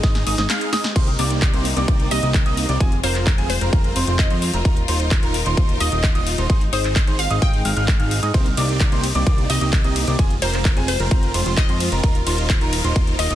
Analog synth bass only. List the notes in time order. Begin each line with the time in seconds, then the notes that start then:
0.27 G#1
0.38 G#1
0.96 C2
1.19 C2
1.54 C2
1.77 C2
2.11 C2
2.23 C2
2.46 C2
2.69 C2
3.04 F1
3.38 F1
3.61 F1
3.73 F1
3.96 F1
4.07 F1
4.31 F2
4.54 F1
4.88 D#1
5.23 D#1
5.46 D#1
5.80 D#1
5.92 D#1
6.15 D#1
6.38 D#1
6.73 G#1
7.07 G#1
7.30 G#1
7.65 G#1
7.77 G#1
8.00 G#1
8.23 G#2
8.34 C2
8.57 C2
8.92 C2
9.15 C2
9.50 C2
9.61 C2
9.84 C2
10.07 C2
10.19 F1
10.42 F1
10.77 F1
11.00 F1
11.34 F1
11.46 F1
11.69 F2
11.92 F1
12.27 D#1
12.61 D#1
12.84 D#1
13.19 D#1
13.30 D#1